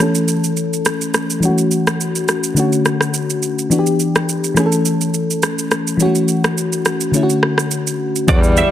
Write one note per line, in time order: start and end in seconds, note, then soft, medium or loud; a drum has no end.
0.00 1.38 E3 medium
0.00 1.39 A3 medium
0.00 1.40 C#4 medium
0.00 1.41 A4 medium
0.00 cross-stick medium
0.15 shaker medium
0.28 shaker medium
0.44 shaker soft
0.57 shaker soft
0.73 shaker soft
0.85 cross-stick medium
0.85 shaker medium
1.01 shaker medium
1.14 cross-stick medium
1.14 shaker soft
1.30 shaker soft
1.40 2.53 E3 medium
1.40 1.49 G3 medium
1.40 2.55 C#4 medium
1.40 shaker medium
1.45 2.55 A3 medium
1.45 2.56 F#4 medium
1.58 shaker soft
1.71 shaker soft
1.87 cross-stick loud
1.87 shaker soft
2.01 shaker medium
2.15 shaker medium
2.28 cross-stick medium
2.28 shaker medium
2.44 shaker medium
2.54 3.68 D3 medium
2.54 3.68 A3 medium
2.54 3.69 C#4 medium
2.54 shaker medium
2.59 3.70 F#4 medium
2.73 shaker soft
2.85 cross-stick medium
2.85 shaker soft
3.01 cross-stick medium
3.01 shaker soft
3.14 shaker medium
3.30 shaker medium
3.43 shaker soft
3.59 shaker soft
3.70 4.53 E3 medium
3.70 4.57 B3 medium
3.70 4.57 D4 medium
3.70 3.79 F#4 medium
3.70 shaker medium
3.79 4.61 G4 medium
3.86 shaker soft
4.00 shaker soft
4.16 cross-stick medium
4.16 shaker soft
4.29 shaker medium
4.44 shaker medium
4.54 5.96 E3 medium
4.54 5.96 A3 medium
4.54 5.97 C#4 medium
4.54 cross-stick medium
4.54 shaker medium
4.59 4.65 G#4 medium
4.66 6.01 A4 medium
4.72 shaker medium
4.85 shaker medium
5.01 shaker soft
5.14 shaker soft
5.31 shaker soft
5.43 cross-stick medium
5.43 shaker medium
5.59 shaker medium
5.71 cross-stick medium
5.71 shaker soft
5.87 shaker soft
5.97 7.10 E3 medium
5.97 6.06 G3 medium
5.97 7.12 C#4 medium
5.97 shaker medium
6.02 7.12 A3 medium
6.02 7.13 F#4 medium
6.15 shaker soft
6.28 shaker medium
6.44 cross-stick medium
6.44 shaker soft
6.58 shaker medium
6.73 shaker medium
6.85 cross-stick medium
6.85 shaker medium
7.01 shaker medium
7.12 8.25 D3 medium
7.12 8.26 A3 medium
7.12 8.26 C#4 medium
7.12 shaker medium
7.17 7.22 E4 medium
7.23 8.31 F#4 medium
7.30 shaker soft
7.43 cross-stick medium
7.58 cross-stick medium
7.58 shaker soft
7.71 shaker medium
7.87 shaker medium
8.16 shaker medium
8.27 8.61 E2 loud
8.27 8.71 D3 medium
8.27 8.71 E3 medium
8.27 8.71 G3 medium
8.27 8.71 G3 loud
8.27 8.71 B3 medium
8.27 8.71 E4 medium
8.27 8.39 D5 loud
8.27 kick loud
8.27 shaker medium
8.44 shaker soft
8.57 8.67 E5 medium
8.57 shaker medium